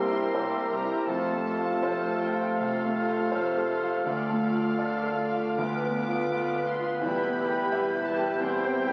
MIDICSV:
0, 0, Header, 1, 12, 480
1, 0, Start_track
1, 0, Tempo, 738916
1, 705, Time_signature, 4, 2, 24, 8
1, 3102, Tempo, 808625
1, 3582, Tempo, 729927
1, 4062, Tempo, 697674
1, 5859, End_track
2, 0, Start_track
2, 0, Title_t, "Flute section"
2, 0, Program_c, 0, 73
2, 0, Note_on_c, 0, 88, 40
2, 679, Note_off_c, 0, 88, 0
2, 708, Note_on_c, 0, 89, 44
2, 4366, Note_off_c, 0, 89, 0
2, 4539, Note_on_c, 0, 91, 46
2, 5859, Note_off_c, 0, 91, 0
2, 5859, End_track
3, 0, Start_track
3, 0, Title_t, "Violin section"
3, 0, Program_c, 1, 48
3, 0, Note_on_c, 1, 84, 64
3, 466, Note_off_c, 1, 84, 0
3, 470, Note_on_c, 1, 82, 58
3, 702, Note_on_c, 1, 81, 65
3, 704, Note_off_c, 1, 82, 0
3, 1418, Note_off_c, 1, 81, 0
3, 1428, Note_on_c, 1, 79, 56
3, 1675, Note_off_c, 1, 79, 0
3, 1676, Note_on_c, 1, 77, 65
3, 2610, Note_off_c, 1, 77, 0
3, 2630, Note_on_c, 1, 77, 70
3, 3566, Note_off_c, 1, 77, 0
3, 3589, Note_on_c, 1, 86, 70
3, 4305, Note_off_c, 1, 86, 0
3, 4307, Note_on_c, 1, 84, 62
3, 4540, Note_off_c, 1, 84, 0
3, 4546, Note_on_c, 1, 83, 73
3, 5246, Note_off_c, 1, 83, 0
3, 5262, Note_on_c, 1, 81, 67
3, 5499, Note_off_c, 1, 81, 0
3, 5502, Note_on_c, 1, 79, 77
3, 5859, Note_off_c, 1, 79, 0
3, 5859, End_track
4, 0, Start_track
4, 0, Title_t, "Oboe"
4, 0, Program_c, 2, 68
4, 0, Note_on_c, 2, 70, 42
4, 676, Note_off_c, 2, 70, 0
4, 707, Note_on_c, 2, 69, 43
4, 3386, Note_off_c, 2, 69, 0
4, 3592, Note_on_c, 2, 71, 47
4, 5504, Note_on_c, 2, 72, 52
4, 5514, Note_off_c, 2, 71, 0
4, 5859, Note_off_c, 2, 72, 0
4, 5859, End_track
5, 0, Start_track
5, 0, Title_t, "Violin section"
5, 0, Program_c, 3, 48
5, 0, Note_on_c, 3, 70, 39
5, 0, Note_on_c, 3, 72, 38
5, 203, Note_off_c, 3, 70, 0
5, 208, Note_off_c, 3, 72, 0
5, 211, Note_on_c, 3, 70, 42
5, 216, Note_on_c, 3, 72, 41
5, 454, Note_off_c, 3, 70, 0
5, 459, Note_off_c, 3, 72, 0
5, 462, Note_on_c, 3, 70, 39
5, 467, Note_on_c, 3, 72, 38
5, 682, Note_off_c, 3, 72, 0
5, 690, Note_on_c, 3, 72, 42
5, 696, Note_off_c, 3, 70, 0
5, 696, Note_on_c, 3, 69, 45
5, 928, Note_off_c, 3, 72, 0
5, 933, Note_off_c, 3, 69, 0
5, 936, Note_on_c, 3, 72, 37
5, 941, Note_on_c, 3, 69, 35
5, 1179, Note_off_c, 3, 72, 0
5, 1181, Note_off_c, 3, 69, 0
5, 1193, Note_on_c, 3, 69, 38
5, 1193, Note_on_c, 3, 72, 40
5, 1422, Note_off_c, 3, 72, 0
5, 1426, Note_off_c, 3, 69, 0
5, 1430, Note_on_c, 3, 72, 41
5, 1434, Note_on_c, 3, 69, 39
5, 1671, Note_off_c, 3, 72, 0
5, 1673, Note_off_c, 3, 69, 0
5, 1681, Note_on_c, 3, 69, 42
5, 1681, Note_on_c, 3, 72, 40
5, 1912, Note_off_c, 3, 69, 0
5, 1912, Note_off_c, 3, 72, 0
5, 1920, Note_on_c, 3, 69, 39
5, 1920, Note_on_c, 3, 72, 39
5, 2137, Note_off_c, 3, 72, 0
5, 2141, Note_off_c, 3, 69, 0
5, 2145, Note_on_c, 3, 72, 44
5, 2149, Note_on_c, 3, 69, 42
5, 2373, Note_off_c, 3, 72, 0
5, 2376, Note_off_c, 3, 69, 0
5, 2381, Note_on_c, 3, 72, 42
5, 2384, Note_on_c, 3, 69, 39
5, 2622, Note_off_c, 3, 72, 0
5, 2623, Note_off_c, 3, 69, 0
5, 2632, Note_on_c, 3, 74, 45
5, 2635, Note_on_c, 3, 69, 45
5, 2862, Note_off_c, 3, 74, 0
5, 2864, Note_off_c, 3, 69, 0
5, 2874, Note_on_c, 3, 69, 38
5, 2877, Note_on_c, 3, 74, 37
5, 3099, Note_off_c, 3, 69, 0
5, 3102, Note_off_c, 3, 74, 0
5, 3106, Note_on_c, 3, 69, 43
5, 3109, Note_on_c, 3, 74, 42
5, 3335, Note_off_c, 3, 69, 0
5, 3337, Note_off_c, 3, 74, 0
5, 3343, Note_on_c, 3, 69, 41
5, 3344, Note_on_c, 3, 74, 41
5, 3580, Note_off_c, 3, 69, 0
5, 3581, Note_off_c, 3, 74, 0
5, 3587, Note_on_c, 3, 65, 43
5, 3589, Note_on_c, 3, 71, 44
5, 3821, Note_off_c, 3, 65, 0
5, 3822, Note_off_c, 3, 71, 0
5, 3829, Note_on_c, 3, 65, 42
5, 3830, Note_on_c, 3, 71, 42
5, 4059, Note_off_c, 3, 65, 0
5, 4059, Note_off_c, 3, 71, 0
5, 4066, Note_on_c, 3, 71, 46
5, 4071, Note_on_c, 3, 65, 42
5, 4298, Note_off_c, 3, 71, 0
5, 4301, Note_off_c, 3, 65, 0
5, 4310, Note_on_c, 3, 65, 41
5, 4315, Note_on_c, 3, 71, 45
5, 4529, Note_off_c, 3, 71, 0
5, 4535, Note_on_c, 3, 67, 49
5, 4537, Note_off_c, 3, 65, 0
5, 4537, Note_on_c, 3, 71, 49
5, 4771, Note_off_c, 3, 67, 0
5, 4772, Note_off_c, 3, 71, 0
5, 4780, Note_on_c, 3, 67, 44
5, 4783, Note_on_c, 3, 71, 41
5, 5008, Note_off_c, 3, 67, 0
5, 5014, Note_off_c, 3, 71, 0
5, 5017, Note_on_c, 3, 67, 46
5, 5022, Note_on_c, 3, 71, 43
5, 5251, Note_off_c, 3, 67, 0
5, 5253, Note_off_c, 3, 71, 0
5, 5263, Note_on_c, 3, 67, 46
5, 5265, Note_on_c, 3, 71, 45
5, 5495, Note_off_c, 3, 67, 0
5, 5496, Note_off_c, 3, 71, 0
5, 5506, Note_on_c, 3, 72, 48
5, 5507, Note_on_c, 3, 67, 48
5, 5740, Note_off_c, 3, 72, 0
5, 5742, Note_off_c, 3, 67, 0
5, 5748, Note_on_c, 3, 72, 43
5, 5751, Note_on_c, 3, 67, 44
5, 5859, Note_off_c, 3, 67, 0
5, 5859, Note_off_c, 3, 72, 0
5, 5859, End_track
6, 0, Start_track
6, 0, Title_t, "Clarinet"
6, 0, Program_c, 4, 71
6, 0, Note_on_c, 4, 67, 45
6, 676, Note_off_c, 4, 67, 0
6, 696, Note_on_c, 4, 65, 46
6, 4334, Note_off_c, 4, 65, 0
6, 4544, Note_on_c, 4, 64, 52
6, 5859, Note_off_c, 4, 64, 0
6, 5859, End_track
7, 0, Start_track
7, 0, Title_t, "Grand piano"
7, 0, Program_c, 5, 0
7, 0, Control_c, 5, 64, 127
7, 0, Note_on_c, 5, 36, 48
7, 0, Note_on_c, 5, 43, 38
7, 0, Note_on_c, 5, 58, 37
7, 0, Note_on_c, 5, 64, 38
7, 0, Note_on_c, 5, 70, 39
7, 0, Note_on_c, 5, 72, 43
7, 75, Note_off_c, 5, 64, 0
7, 75, Note_on_c, 5, 64, 38
7, 171, Note_off_c, 5, 58, 0
7, 225, Note_off_c, 5, 72, 0
7, 225, Note_on_c, 5, 72, 45
7, 332, Note_off_c, 5, 64, 0
7, 387, Note_off_c, 5, 70, 0
7, 387, Note_on_c, 5, 70, 38
7, 484, Note_off_c, 5, 72, 0
7, 552, Note_on_c, 5, 64, 38
7, 640, Note_off_c, 5, 70, 0
7, 693, Note_on_c, 5, 41, 46
7, 706, Note_off_c, 5, 64, 0
7, 715, Control_c, 5, 64, 0
7, 717, Note_off_c, 5, 36, 0
7, 718, Note_off_c, 5, 43, 0
7, 802, Control_c, 5, 64, 127
7, 862, Note_on_c, 5, 57, 37
7, 1028, Note_on_c, 5, 65, 40
7, 1121, Note_off_c, 5, 57, 0
7, 1189, Note_on_c, 5, 72, 45
7, 1288, Note_off_c, 5, 65, 0
7, 1352, Note_on_c, 5, 69, 41
7, 1451, Note_off_c, 5, 72, 0
7, 1518, Note_on_c, 5, 65, 37
7, 1614, Note_off_c, 5, 69, 0
7, 1647, Note_off_c, 5, 41, 0
7, 1692, Note_on_c, 5, 48, 39
7, 1775, Note_off_c, 5, 65, 0
7, 1849, Note_on_c, 5, 57, 38
7, 1937, Note_off_c, 5, 48, 0
7, 2006, Note_on_c, 5, 65, 41
7, 2092, Note_off_c, 5, 57, 0
7, 2156, Note_on_c, 5, 72, 47
7, 2250, Note_off_c, 5, 65, 0
7, 2323, Note_on_c, 5, 69, 40
7, 2408, Note_off_c, 5, 72, 0
7, 2485, Note_on_c, 5, 65, 39
7, 2574, Note_off_c, 5, 69, 0
7, 2638, Note_off_c, 5, 65, 0
7, 2638, Note_on_c, 5, 38, 48
7, 2641, Control_c, 5, 64, 0
7, 2726, Control_c, 5, 64, 127
7, 2789, Note_on_c, 5, 57, 38
7, 2946, Note_on_c, 5, 65, 40
7, 3040, Note_off_c, 5, 57, 0
7, 3109, Note_on_c, 5, 74, 46
7, 3196, Note_off_c, 5, 65, 0
7, 3254, Note_on_c, 5, 69, 43
7, 3360, Note_off_c, 5, 74, 0
7, 3438, Note_on_c, 5, 65, 38
7, 3519, Note_off_c, 5, 69, 0
7, 3564, Note_off_c, 5, 38, 0
7, 3581, Note_on_c, 5, 38, 52
7, 3592, Note_off_c, 5, 65, 0
7, 3598, Control_c, 5, 64, 0
7, 3700, Control_c, 5, 64, 127
7, 3747, Note_on_c, 5, 59, 43
7, 3910, Note_on_c, 5, 65, 44
7, 4001, Note_off_c, 5, 59, 0
7, 4067, Note_on_c, 5, 77, 49
7, 4161, Note_off_c, 5, 65, 0
7, 4230, Note_on_c, 5, 71, 45
7, 4319, Note_off_c, 5, 77, 0
7, 4388, Note_on_c, 5, 65, 45
7, 4478, Note_off_c, 5, 71, 0
7, 4509, Note_off_c, 5, 38, 0
7, 4542, Note_off_c, 5, 65, 0
7, 4543, Note_on_c, 5, 40, 53
7, 4550, Control_c, 5, 64, 0
7, 4639, Control_c, 5, 64, 127
7, 4700, Note_on_c, 5, 59, 40
7, 4868, Note_on_c, 5, 67, 44
7, 4955, Note_off_c, 5, 59, 0
7, 5030, Note_on_c, 5, 76, 50
7, 5118, Note_off_c, 5, 67, 0
7, 5190, Note_on_c, 5, 71, 45
7, 5278, Note_off_c, 5, 76, 0
7, 5352, Note_on_c, 5, 67, 45
7, 5438, Note_off_c, 5, 71, 0
7, 5471, Note_off_c, 5, 40, 0
7, 5502, Note_on_c, 5, 40, 56
7, 5505, Note_off_c, 5, 67, 0
7, 5508, Control_c, 5, 64, 0
7, 5617, Control_c, 5, 64, 127
7, 5663, Note_on_c, 5, 60, 47
7, 5814, Note_on_c, 5, 67, 45
7, 5859, Note_off_c, 5, 40, 0
7, 5859, Note_off_c, 5, 60, 0
7, 5859, Note_off_c, 5, 67, 0
7, 5859, End_track
8, 0, Start_track
8, 0, Title_t, "Viola section"
8, 0, Program_c, 6, 48
8, 0, Note_on_c, 6, 55, 39
8, 0, Note_on_c, 6, 67, 38
8, 221, Note_off_c, 6, 67, 0
8, 222, Note_off_c, 6, 55, 0
8, 229, Note_on_c, 6, 55, 38
8, 236, Note_on_c, 6, 67, 39
8, 458, Note_off_c, 6, 67, 0
8, 460, Note_off_c, 6, 55, 0
8, 466, Note_on_c, 6, 67, 36
8, 467, Note_on_c, 6, 55, 37
8, 698, Note_off_c, 6, 55, 0
8, 698, Note_off_c, 6, 67, 0
8, 704, Note_on_c, 6, 65, 42
8, 707, Note_on_c, 6, 57, 41
8, 935, Note_off_c, 6, 65, 0
8, 937, Note_off_c, 6, 57, 0
8, 943, Note_on_c, 6, 65, 36
8, 945, Note_on_c, 6, 57, 34
8, 1175, Note_off_c, 6, 57, 0
8, 1180, Note_off_c, 6, 65, 0
8, 1183, Note_on_c, 6, 57, 41
8, 1188, Note_on_c, 6, 65, 39
8, 1425, Note_off_c, 6, 65, 0
8, 1427, Note_off_c, 6, 57, 0
8, 1433, Note_on_c, 6, 65, 39
8, 1435, Note_on_c, 6, 57, 37
8, 1673, Note_off_c, 6, 65, 0
8, 1674, Note_off_c, 6, 57, 0
8, 1684, Note_on_c, 6, 57, 39
8, 1687, Note_on_c, 6, 65, 39
8, 1911, Note_off_c, 6, 57, 0
8, 1913, Note_off_c, 6, 65, 0
8, 1919, Note_on_c, 6, 57, 41
8, 1921, Note_on_c, 6, 65, 41
8, 2146, Note_off_c, 6, 57, 0
8, 2147, Note_off_c, 6, 65, 0
8, 2155, Note_on_c, 6, 57, 38
8, 2155, Note_on_c, 6, 65, 40
8, 2387, Note_off_c, 6, 57, 0
8, 2387, Note_off_c, 6, 65, 0
8, 2399, Note_on_c, 6, 57, 39
8, 2399, Note_on_c, 6, 65, 36
8, 2631, Note_off_c, 6, 57, 0
8, 2631, Note_off_c, 6, 65, 0
8, 2637, Note_on_c, 6, 57, 44
8, 2639, Note_on_c, 6, 65, 45
8, 2859, Note_off_c, 6, 65, 0
8, 2861, Note_off_c, 6, 57, 0
8, 2867, Note_on_c, 6, 65, 38
8, 2869, Note_on_c, 6, 57, 41
8, 3094, Note_off_c, 6, 65, 0
8, 3098, Note_off_c, 6, 57, 0
8, 3102, Note_on_c, 6, 65, 42
8, 3106, Note_on_c, 6, 57, 43
8, 3335, Note_off_c, 6, 65, 0
8, 3337, Note_off_c, 6, 57, 0
8, 3346, Note_on_c, 6, 65, 41
8, 3350, Note_on_c, 6, 57, 42
8, 3580, Note_off_c, 6, 65, 0
8, 3584, Note_off_c, 6, 57, 0
8, 3587, Note_on_c, 6, 59, 41
8, 3588, Note_on_c, 6, 65, 44
8, 3824, Note_off_c, 6, 65, 0
8, 3828, Note_off_c, 6, 59, 0
8, 3832, Note_on_c, 6, 65, 42
8, 3835, Note_on_c, 6, 59, 43
8, 4058, Note_off_c, 6, 59, 0
8, 4058, Note_off_c, 6, 65, 0
8, 4066, Note_on_c, 6, 59, 44
8, 4066, Note_on_c, 6, 65, 44
8, 4298, Note_off_c, 6, 65, 0
8, 4299, Note_off_c, 6, 59, 0
8, 4311, Note_on_c, 6, 59, 39
8, 4312, Note_on_c, 6, 65, 42
8, 4538, Note_off_c, 6, 59, 0
8, 4538, Note_off_c, 6, 65, 0
8, 4554, Note_on_c, 6, 64, 50
8, 4557, Note_on_c, 6, 55, 49
8, 4780, Note_off_c, 6, 64, 0
8, 4782, Note_off_c, 6, 55, 0
8, 4789, Note_on_c, 6, 64, 41
8, 4791, Note_on_c, 6, 55, 41
8, 5018, Note_off_c, 6, 64, 0
8, 5019, Note_off_c, 6, 55, 0
8, 5029, Note_on_c, 6, 55, 45
8, 5029, Note_on_c, 6, 64, 45
8, 5254, Note_off_c, 6, 64, 0
8, 5255, Note_off_c, 6, 55, 0
8, 5262, Note_on_c, 6, 64, 44
8, 5264, Note_on_c, 6, 55, 45
8, 5492, Note_off_c, 6, 55, 0
8, 5492, Note_off_c, 6, 64, 0
8, 5500, Note_on_c, 6, 55, 46
8, 5500, Note_on_c, 6, 64, 47
8, 5733, Note_off_c, 6, 55, 0
8, 5739, Note_off_c, 6, 64, 0
8, 5741, Note_on_c, 6, 55, 47
8, 5747, Note_on_c, 6, 64, 43
8, 5859, Note_off_c, 6, 55, 0
8, 5859, Note_off_c, 6, 64, 0
8, 5859, End_track
9, 0, Start_track
9, 0, Title_t, "French horn section"
9, 0, Program_c, 7, 60
9, 0, Note_on_c, 7, 58, 43
9, 0, Note_on_c, 7, 67, 43
9, 676, Note_off_c, 7, 67, 0
9, 678, Note_off_c, 7, 58, 0
9, 708, Note_on_c, 7, 65, 45
9, 710, Note_on_c, 7, 57, 47
9, 3563, Note_off_c, 7, 57, 0
9, 3588, Note_on_c, 7, 59, 44
9, 4419, Note_off_c, 7, 65, 0
9, 4536, Note_on_c, 7, 67, 48
9, 5492, Note_on_c, 7, 60, 51
9, 5499, Note_off_c, 7, 59, 0
9, 5859, Note_off_c, 7, 60, 0
9, 5859, Note_off_c, 7, 67, 0
9, 5859, End_track
10, 0, Start_track
10, 0, Title_t, "Bassoon"
10, 0, Program_c, 8, 70
10, 0, Note_on_c, 8, 48, 44
10, 2604, Note_off_c, 8, 48, 0
10, 2631, Note_on_c, 8, 50, 44
10, 4339, Note_off_c, 8, 50, 0
10, 4542, Note_on_c, 8, 52, 50
10, 5859, Note_off_c, 8, 52, 0
10, 5859, End_track
11, 0, Start_track
11, 0, Title_t, "Cello section"
11, 0, Program_c, 10, 48
11, 0, Note_on_c, 10, 36, 45
11, 168, Note_off_c, 10, 36, 0
11, 225, Note_on_c, 10, 36, 43
11, 648, Note_off_c, 10, 36, 0
11, 702, Note_on_c, 10, 41, 48
11, 1128, Note_off_c, 10, 41, 0
11, 1191, Note_on_c, 10, 41, 48
11, 1623, Note_off_c, 10, 41, 0
11, 1681, Note_on_c, 10, 41, 48
11, 2095, Note_off_c, 10, 41, 0
11, 2148, Note_on_c, 10, 41, 47
11, 2573, Note_off_c, 10, 41, 0
11, 2634, Note_on_c, 10, 38, 51
11, 3049, Note_off_c, 10, 38, 0
11, 3106, Note_on_c, 10, 38, 52
11, 3529, Note_off_c, 10, 38, 0
11, 3591, Note_on_c, 10, 38, 51
11, 4013, Note_off_c, 10, 38, 0
11, 4068, Note_on_c, 10, 38, 48
11, 4484, Note_off_c, 10, 38, 0
11, 4541, Note_on_c, 10, 40, 56
11, 4962, Note_off_c, 10, 40, 0
11, 5020, Note_on_c, 10, 40, 56
11, 5440, Note_off_c, 10, 40, 0
11, 5496, Note_on_c, 10, 40, 54
11, 5859, Note_off_c, 10, 40, 0
11, 5859, End_track
12, 0, Start_track
12, 0, Title_t, "Double bass section"
12, 0, Program_c, 11, 48
12, 0, Note_on_c, 11, 36, 47
12, 170, Note_off_c, 11, 36, 0
12, 229, Note_on_c, 11, 36, 46
12, 650, Note_off_c, 11, 36, 0
12, 704, Note_on_c, 11, 29, 47
12, 1129, Note_off_c, 11, 29, 0
12, 1181, Note_on_c, 11, 29, 46
12, 1618, Note_off_c, 11, 29, 0
12, 1678, Note_on_c, 11, 29, 47
12, 2093, Note_off_c, 11, 29, 0
12, 2145, Note_on_c, 11, 29, 47
12, 2572, Note_off_c, 11, 29, 0
12, 2629, Note_on_c, 11, 38, 49
12, 3046, Note_off_c, 11, 38, 0
12, 3105, Note_on_c, 11, 38, 52
12, 3529, Note_off_c, 11, 38, 0
12, 3584, Note_on_c, 11, 38, 52
12, 4009, Note_off_c, 11, 38, 0
12, 4065, Note_on_c, 11, 38, 52
12, 4483, Note_off_c, 11, 38, 0
12, 4539, Note_on_c, 11, 28, 51
12, 4961, Note_off_c, 11, 28, 0
12, 5017, Note_on_c, 11, 28, 53
12, 5439, Note_off_c, 11, 28, 0
12, 5491, Note_on_c, 11, 28, 53
12, 5859, Note_off_c, 11, 28, 0
12, 5859, End_track
0, 0, End_of_file